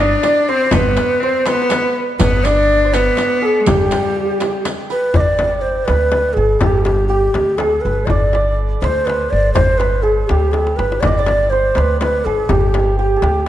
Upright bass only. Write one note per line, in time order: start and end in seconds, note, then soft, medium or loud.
0.00 0.13 G1 medium
0.72 0.95 G1 medium
2.20 3.08 G1 loud
3.68 3.90 G1 medium
5.14 5.80 G1 medium
5.89 6.32 D2 medium
6.37 6.58 G1 medium
6.61 7.27 G1 medium
7.35 7.78 D2 medium
7.85 8.06 G1 medium
8.10 8.75 G1 medium
8.82 9.26 D2 loud
9.32 9.54 G1 medium
9.57 10.22 G1 medium
10.30 10.73 D2 medium
10.79 11.00 G1 medium
11.04 11.69 G1 medium
11.77 12.20 D2 medium
12.26 12.47 G1 medium
12.49 13.15 G1 medium
13.22 13.48 D2 loud